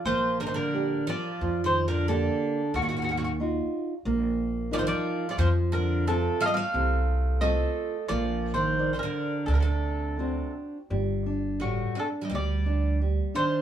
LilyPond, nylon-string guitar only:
\new Staff \with { instrumentName = "Nylon-string guitar" } { \time 4/4 \key bes \major \tempo 4 = 88 bes4 <g' bes' d''>4 f4 <bes g' d''>4 | ees4 <ees' f' ges'>4 bes4 <ees' f' bes'>4 | f4 <c' f' a'>4 c4 <c' f' a'>4 | bes4 <bes' c'' d''>4 d4 <c' d' fis'>4 |
\key c \dorian g8 d'8 g8 d'8 g8 d'8 g8 d'8 | }